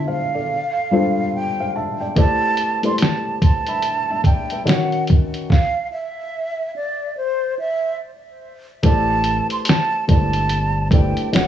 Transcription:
Already playing: felt piano D3 D4 E4 F4 C5 E5 A5
0.08 felt piano C5 F5, flute F5
0.35 felt piano A4 D5
0.91 felt piano G3 D4 F4 A4 C5
1.35 flute G5
1.60 felt piano C5 F5
1.76 felt piano E5 A5
2.00 felt piano D5 G5
2.15 felt piano A3 E4 G4 B4 C5 D5, flute A5, kick, closed hi-hat
2.57 closed hi-hat
2.83 felt piano A3 E4 G4 B4 C5 D5, flute C6, closed hi-hat
2.98 flute A5, closed hi-hat
3.02 snare
3.42 flute A5, kick, closed hi-hat
3.67 felt piano E5 B5, closed hi-hat
3.82 closed hi-hat
4.10 felt piano E5 A5
4.24 felt piano D5 G5, flute G5, kick, closed hi-hat
4.50 felt piano B4 E5, closed hi-hat
4.65 felt piano D#3 C#4 D#4 F#4 C#5, flute F#5, snare, closed hi-hat
4.92 closed hi-hat
5.07 kick, closed hi-hat
5.34 closed hi-hat
5.50 flute F5, kick, snare
5.92 flute E5
6.76 flute D5
7.17 flute C5
7.59 flute E5
8.83 sub bass A1, felt piano A3 E4 G4 B4 C5 D5, flute A5, kick, closed hi-hat
9.24 closed hi-hat
9.50 flute C6, closed hi-hat
9.65 flute A5, closed hi-hat
9.69 snare
10.07 sub bass G1, felt piano A3 E4 G4 B4 C5 D5, flute A5, kick, closed hi-hat
10.33 closed hi-hat
10.49 closed hi-hat
10.91 felt piano A3 E4 G4 B4 C5 D5, flute G5, kick, closed hi-hat
11.17 closed hi-hat
11.33 sub bass D#1, felt piano D#3 C#4 D#4 F#4 C#5, flute F#5, snare, closed hi-hat

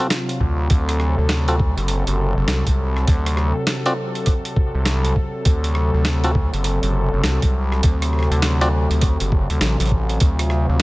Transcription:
Already playing: analog synth pad C3 F#3 F4
0.10 snare, closed hi-hat
0.29 closed hi-hat
0.41 analog synth bass D2, kick
0.70 analog synth bass D2, analog synth pad A4, kick, closed hi-hat
0.89 cross-stick, closed hi-hat
1.00 cross-stick
1.18 analog synth bass D2
1.29 snare
1.48 clav C4 F4 F#4 A4, closed hi-hat
1.60 kick
1.77 analog synth bass F#1, closed hi-hat
1.88 closed hi-hat
2.07 analog synth bass F#1, closed hi-hat
2.37 analog synth bass F#1
2.48 analog synth bass C2, snare, closed hi-hat
2.67 analog synth bass C2, kick, closed hi-hat
2.97 cross-stick
3.08 analog synth bass D2, kick, closed hi-hat
3.26 cross-stick, closed hi-hat
3.37 cross-stick
3.67 snare, closed hi-hat
3.86 clav C4 F4 F#4 D5, closed hi-hat
4.15 closed hi-hat
4.26 kick, closed hi-hat
4.45 closed hi-hat
4.56 kick
4.75 analog synth bass C2
4.85 snare, closed hi-hat
5.05 closed hi-hat
5.16 kick
5.45 analog synth bass D2, kick, closed hi-hat
5.64 closed hi-hat
5.75 cross-stick
5.94 analog synth bass D2
6.05 snare, closed hi-hat
6.24 clav C4 F4 F#4 A4, closed hi-hat
6.35 kick
6.53 analog synth bass F#1, closed hi-hat
6.64 closed hi-hat
6.83 analog synth bass F#1, closed hi-hat
7.13 analog synth bass F#1
7.24 analog synth bass C2, snare, closed hi-hat
7.42 analog synth bass C2, kick, closed hi-hat
7.72 cross-stick
7.83 analog synth bass D2, kick, closed hi-hat
8.02 cross-stick, closed hi-hat
8.13 cross-stick
8.19 cross-stick
8.23 cross-stick
8.31 analog synth bass D2, closed hi-hat
8.42 snare, closed hi-hat
8.61 clav C4 F4 F#4 D5, closed hi-hat
8.91 analog synth bass D2, closed hi-hat
9.01 kick, closed hi-hat
9.20 analog synth bass F#1, closed hi-hat
9.32 kick
9.50 analog synth bass D2, closed hi-hat
9.61 analog synth bass A1, snare, closed hi-hat
9.80 analog synth bass A1, closed hi-hat
9.82 closed hi-hat
9.85 closed hi-hat
9.87 closed hi-hat
9.89 kick, closed hi-hat
10.09 closed hi-hat
10.20 analog synth bass D2, analog synth pad F4, kick, closed hi-hat
10.39 cross-stick, closed hi-hat
10.50 cross-stick
10.69 analog synth bass D2

